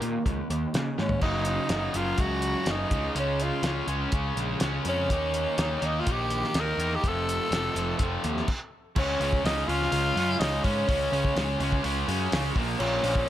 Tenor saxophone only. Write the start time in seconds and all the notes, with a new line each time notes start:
Already playing: A#3
0.98 C#4
1.22 D#4
1.96 F4
2.20 F#4
2.70 D#4
3.19 C#4
3.42 F4
4.89 C#4
5.86 D#4
5.99 F4
6.11 G4
6.60 A#4
6.96 G4
7.08 A4
8.98 C#4
9.45 D#4
9.68 F4
10.39 D#4
10.64 C#4
12.79 C#4